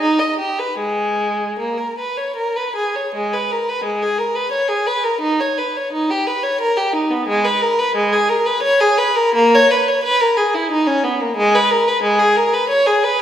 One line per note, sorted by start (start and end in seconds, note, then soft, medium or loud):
0.00 0.18 D#4 medium
0.19 0.37 D#5 medium
0.39 0.57 G4 medium
0.59 0.78 B4 medium
0.78 1.57 G#3 medium
1.59 1.77 A#3 medium
1.78 1.97 A#4 soft
1.98 2.16 B4 soft
2.17 2.36 C#5 medium
2.36 2.55 A#4 medium
2.56 2.76 B4 medium
2.76 2.95 G#4 medium
2.96 3.14 C#5 medium
3.15 3.32 G#3 medium
3.33 3.50 B4 medium
3.51 3.67 A#4 medium
3.69 3.85 B4 medium
3.84 4.00 G#3 medium
4.02 4.18 G#4 medium
4.18 4.35 A#4 medium
4.35 4.51 B4 medium
4.51 4.68 C#5 medium
4.68 4.85 G#4 medium
4.86 5.03 B4 medium
5.04 5.21 A#4 medium
5.21 5.39 D#4 medium
5.40 5.58 C#5 medium
5.58 5.75 B4 medium
5.77 5.93 C#5 medium
5.92 6.09 D#4 medium
6.10 6.27 G4 medium
6.27 6.44 B4 medium
6.43 6.60 C#5 medium
6.60 6.77 A#4 medium
6.77 6.94 G4 medium
6.93 7.10 D#4 medium
7.11 7.28 B3 medium
7.28 7.44 G#3 medium
7.45 7.62 B4 medium
7.61 7.78 A#4 medium
7.79 7.96 B4 medium
7.96 8.12 G#3 medium
8.13 8.30 G#4 medium
8.29 8.46 A#4 medium
8.46 8.63 B4 medium
8.62 8.79 C#5 medium
8.80 8.98 G#4 medium
8.98 9.16 B4 medium
9.15 9.34 A#4 medium
9.35 9.52 A#3 loud
9.55 9.71 C#5 medium
9.71 9.87 B4 medium
9.88 10.04 C#5 medium
10.03 10.20 B4 loud
10.20 10.37 A#4 medium
10.37 10.53 G#4 medium
10.54 10.71 E4 medium
10.71 10.87 D#4 medium
10.87 11.04 C#4 medium
11.04 11.20 B3 medium
11.20 11.37 A#3 medium
11.36 11.53 G#3 loud
11.55 11.70 B4 medium
11.70 11.86 A#4 medium
11.87 12.03 B4 medium
12.03 12.19 G#3 medium
12.19 12.35 G#4 medium
12.36 12.52 A#4 medium
12.53 12.69 B4 medium
12.69 12.85 C#5 medium
12.87 13.02 G#4 medium
13.03 13.20 B4 medium